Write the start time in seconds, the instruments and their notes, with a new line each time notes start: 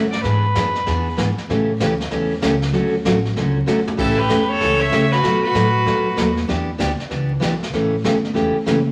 Already playing: upright bass G2
0.11 fiddle D5, snare
0.21 upright bass G#2, steel-string acoustic guitar E3 B3 D4 G#4, fiddle B4, brush sweep, kick, snare
0.55 upright bass F#2, steel-string acoustic guitar E3 B3 D4 G#4, kick, snare, hi-hat pedal
0.75 snare
0.86 upright bass E2, steel-string acoustic guitar E3 B3 D4 G#4, brush sweep, kick, snare
1.17 upright bass G#2, steel-string acoustic guitar E3 B3 D4 G#4, kick, snare, hi-hat pedal
1.38 muted upright bass stroke, snare
1.49 upright bass A2, steel-string acoustic guitar C#3 E3 A3 C#4 G4, brush sweep, kick, snare
1.80 upright bass D2, steel-string acoustic guitar C#3 E3 A3 C#4 G4, kick, snare, hi-hat pedal
2.00 snare
2.11 upright bass E2, steel-string acoustic guitar C#3 E3 A3 C#4 G4, brush sweep, kick, snare
2.42 upright bass C#2, steel-string acoustic guitar C#3 E3 A3 C#4 G4, kick, snare, hi-hat pedal
2.62 snare
2.72 upright bass D2, steel-string acoustic guitar D3 F#3 A3 C#4 F#4, brush sweep, kick, snare
3.05 upright bass A1, steel-string acoustic guitar D3 F#3 A3 C#4 F#4, kick, snare, hi-hat pedal
3.25 snare
3.36 upright bass C#2, steel-string acoustic guitar D3 F#3 A3 C#4 F#4, brush sweep, kick, snare
3.66 upright bass B1, steel-string acoustic guitar D3 F#3 A3 C#4 F#4, snare, hi-hat pedal
3.87 floor tom
3.97 upright bass A1, steel-string acoustic guitar C#3 E3 A3 C#4 G4, fiddle E4 A4, brush sweep, kick, snare, crash
4.18 fiddle G4 B4
4.29 upright bass E2, steel-string acoustic guitar C#3 E3 A3 C#4 G4, kick, snare, hi-hat pedal
4.40 fiddle G4 B4
4.48 fiddle A4 C#5
4.60 upright bass C#2, steel-string acoustic guitar C#3 E3 A3 C#4 G4, brush sweep, kick, snare
4.80 fiddle C#5 E5
4.91 steel-string acoustic guitar C#3 E3 A3 C#4 G4, upright bass C#3, kick, snare, hi-hat pedal
5.11 fiddle F#4 B4, snare
5.22 steel-string acoustic guitar B2 F#3 A3 D#4 F#4, upright bass B2, brush sweep, kick, snare
5.42 fiddle F#4 B4
5.54 upright bass A2, steel-string acoustic guitar B2 F#3 A3 D#4 F#4, kick, snare, hi-hat pedal
5.85 upright bass F#2, steel-string acoustic guitar B2 F#3 A3 D#4 F#4, brush sweep, kick, snare
6.16 upright bass D#2, steel-string acoustic guitar B2 F#3 A3 D#4 F#4, kick, snare, hi-hat pedal
6.37 snare
6.48 upright bass E2, steel-string acoustic guitar E3 B3 D4 G4, brush sweep, kick, snare
6.78 upright bass D2, steel-string acoustic guitar E3 B3 D4 G4, kick, snare, hi-hat pedal
7.00 muted upright bass stroke, snare
7.10 upright bass C#2, steel-string acoustic guitar E3 B3 D4 G4, brush sweep, kick, snare
7.40 upright bass B1, steel-string acoustic guitar E3 B3 D4 G4, kick, snare, hi-hat pedal
7.63 snare
7.73 upright bass A1, steel-string acoustic guitar C#3 E3 A3 C#4 G4, brush sweep, kick, snare
8.04 upright bass G1, steel-string acoustic guitar C#3 E3 A3 C#4 G4, kick, snare, hi-hat pedal
8.25 snare
8.33 upright bass E1, steel-string acoustic guitar C#3 E3 A3 C#4 G4, brush sweep, kick, snare
8.66 upright bass F#1, steel-string acoustic guitar C#3 E3 A3 C#4 G4, kick, snare, hi-hat pedal